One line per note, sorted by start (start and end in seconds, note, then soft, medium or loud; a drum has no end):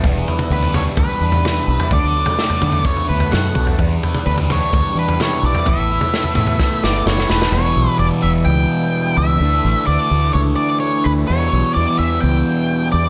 0.00 0.23 E1 medium
0.00 1.87 E3 medium
0.00 0.76 B3 medium
0.00 3.75 B3 medium
0.00 kick loud
0.00 floor tom medium
0.05 1.22 E2 medium
0.05 1.90 G3 medium
0.05 5.63 D4 medium
0.28 1.45 E4 medium
0.28 floor tom medium
0.39 floor tom medium
0.39 mid tom medium
0.50 0.89 D2 medium
0.50 0.98 G3 medium
0.50 0.75 B4 medium
0.62 floor tom medium
0.74 1.22 D4 medium
0.74 0.81 C#5 medium
0.74 floor tom medium
0.74 mid tom medium
0.97 1.07 D2 medium
0.97 1.69 G3 medium
0.97 1.88 B4 medium
0.97 kick loud
0.97 floor tom medium
1.21 1.59 E2 medium
1.21 2.63 D4 medium
1.32 floor tom medium
1.45 1.92 E4 medium
1.45 snare medium
1.45 mid tom medium
1.68 1.77 B1 medium
1.68 1.93 G3 medium
1.80 floor tom medium
1.91 2.01 D2 loud
1.91 3.10 D3 medium
1.91 3.78 F#3 medium
1.91 3.77 A3 medium
1.91 2.85 D5 medium
1.91 kick loud
1.91 floor tom medium
2.04 2.23 D2 medium
2.17 3.31 F#4 medium
2.26 floor tom medium
2.26 mid tom medium
2.39 2.85 A3 medium
2.39 snare medium
2.50 floor tom medium
2.62 2.81 D3 medium
2.62 3.08 B3 medium
2.62 floor tom medium
2.62 mid tom medium
2.72 floor tom medium
2.85 3.55 A3 medium
2.85 3.07 C#5 loud
2.85 kick loud
2.85 floor tom medium
2.97 floor tom medium
3.09 3.28 D2 medium
3.09 4.50 B3 medium
3.09 3.31 B4 medium
3.20 floor tom medium
3.32 3.52 F#2 medium
3.32 3.79 F#4 medium
3.32 3.64 F#5 medium
3.32 snare medium
3.32 mid tom medium
3.55 3.75 B1 medium
3.55 3.79 A3 medium
3.55 kick medium
3.55 mid tom medium
3.67 floor tom medium
3.79 3.98 E2 medium
3.79 4.97 E2 medium
3.79 7.51 E3 medium
3.79 5.65 G3 medium
3.79 7.51 B3 medium
3.79 kick loud
3.79 floor tom medium
4.03 5.21 E4 medium
4.03 floor tom medium
4.15 floor tom medium
4.15 mid tom medium
4.26 4.65 D2 loud
4.26 4.73 G3 medium
4.26 4.33 B4 medium
4.38 floor tom medium
4.50 4.96 D4 medium
4.50 4.99 C#5 medium
4.50 floor tom medium
4.50 mid tom medium
4.73 4.82 D2 medium
4.73 5.44 G3 medium
4.73 kick loud
4.73 floor tom medium
4.95 5.34 E3 medium
4.95 5.67 D4 medium
4.95 5.22 B4 medium
5.09 floor tom medium
5.20 5.92 E4 medium
5.20 5.45 C#5 medium
5.20 snare medium
5.20 mid tom medium
5.43 5.53 B1 medium
5.43 5.67 G3 medium
5.43 5.68 D5 medium
5.55 floor tom medium
5.66 5.76 A1 loud
5.66 6.85 A2 medium
5.66 7.52 A3 medium
5.66 7.52 E4 medium
5.66 7.04 E5 loud
5.66 kick loud
5.66 floor tom medium
5.78 5.97 A1 medium
5.92 7.06 E4 medium
6.01 floor tom medium
6.01 mid tom medium
6.14 6.60 A3 medium
6.14 snare medium
6.24 floor tom medium
6.35 6.56 A2 medium
6.35 6.84 B3 medium
6.35 floor tom medium
6.35 mid tom medium
6.47 floor tom medium
6.59 7.29 A3 medium
6.59 kick loud
6.59 snare medium
6.84 7.05 G1 medium
6.84 7.54 B3 medium
6.84 7.07 D5 medium
6.84 snare medium
7.06 7.27 F#1 medium
7.06 7.54 E4 medium
7.06 7.30 C#5 medium
7.06 snare medium
7.18 snare medium
7.30 7.51 E1 medium
7.30 7.54 A3 medium
7.30 7.52 B4 medium
7.30 snare medium
7.42 snare medium
7.52 7.72 E1 loud
7.52 9.39 E2 medium
7.52 13.09 E3 medium
7.52 9.39 G3 medium
7.52 9.39 B3 medium
7.52 11.25 E4 medium
7.52 7.97 C#5 medium
7.57 9.39 B2 medium
7.57 9.42 E3 loud
7.77 7.86 B1 medium
7.99 8.09 E1 medium
7.99 8.06 D5 loud
8.22 8.43 E1 medium
8.22 8.29 E5 medium
8.45 8.66 C#2 loud
8.45 9.18 G5 loud
9.17 9.36 C#2 medium
9.17 9.84 E5 medium
9.39 9.60 D2 loud
9.39 11.26 D3 medium
9.39 11.25 A3 medium
9.39 11.27 A3 medium
9.39 11.26 D4 medium
9.44 11.28 D4 medium
9.65 9.74 A1 loud
9.86 9.97 D2 medium
9.86 10.33 D5 loud
10.11 10.30 D2 medium
10.33 10.54 C#2 loud
10.33 10.40 C#5 loud
10.56 10.79 D5 medium
10.80 11.05 C#5 medium
11.04 11.25 D2 loud
11.04 11.11 B4 medium
11.26 13.09 E2 medium
11.26 11.48 E2 loud
11.26 13.09 B2 medium
11.26 13.09 G3 medium
11.26 13.09 B3 medium
11.26 13.09 E4 medium
11.26 11.74 C#5 medium
11.31 13.09 E3 medium
11.53 11.62 B1 loud
11.74 11.85 E2 medium
11.74 11.98 D5 medium
11.99 12.18 E2 medium
11.99 12.20 E5 medium
12.21 12.42 C#2 loud
12.21 12.87 G5 loud
12.92 13.09 E2 medium
12.92 13.09 D5 medium